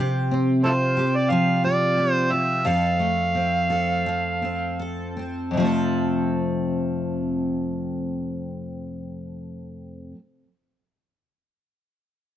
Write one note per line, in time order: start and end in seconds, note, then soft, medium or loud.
0.00 2.65 C3 medium
0.00 1.00 F3 medium
0.00 0.31 C4 soft
0.00 0.96 G4 medium
0.31 2.99 C4 soft
0.64 0.71 E4 medium
0.64 1.63 F4 soft
0.64 0.72 A4 medium
0.64 1.17 C5 medium
0.97 1.96 G4 medium
1.16 1.32 D5 medium
1.30 4.06 F3 medium
1.30 1.64 F5 medium
1.64 2.31 F4 soft
1.64 2.12 D5 medium
1.97 2.65 G4 medium
2.12 2.34 C5 medium
2.31 3.34 F4 soft
2.31 2.68 E5 medium
2.65 5.50 F2 medium
2.65 3.70 A4 medium
2.65 4.80 F5 medium
2.99 5.59 A3 soft
3.35 4.42 C4 soft
3.70 4.79 A4 medium
4.06 5.57 F3 medium
4.42 5.16 C4 soft
4.79 5.64 A4 soft
5.17 5.62 C4 soft
5.51 10.11 F2 medium
5.51 10.13 C3 medium
5.57 10.15 F3 medium
5.57 10.16 A3 medium
5.62 10.17 C4 medium
5.62 10.18 A4 medium